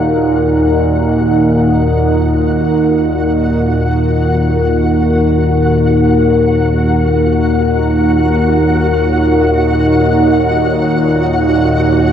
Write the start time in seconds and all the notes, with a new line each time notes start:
Already playing: D#2 A#2 D#4 F#4 A#4 D#5 F#5
2.94 F#4 F#5
6.88 C#5